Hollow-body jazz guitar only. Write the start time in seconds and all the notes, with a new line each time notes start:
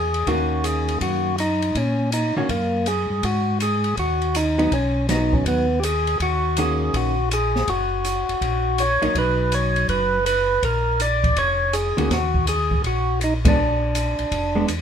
0.28 D#3 A#3 C#4 F#4
2.37 D#3 A#3 C#4 F#4
4.58 F#3 B3 D#4
5.09 F#3 B3 D#4
6.58 D#3 A#3 C#4 F#4
9.02 F#3 A#3 D#4
9.15 F#3 D#4
11.97 D#3 A#3 C#4 F#4
13.45 G#3 B3 D4
14.55 G#3 B3 D4